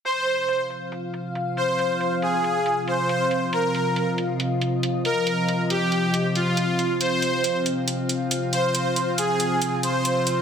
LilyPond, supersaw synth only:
\new Staff \with { instrumentName = "Supersaw synth" } { \time 4/4 \key c \phrygian \tempo 4 = 138 c''4. r2 c''8~ | c''4 aes'4. c''4. | bes'4. r2 bes'8~ | bes'4 g'4. f'4. |
c''4. r2 c''8~ | c''4 aes'4. c''4. | }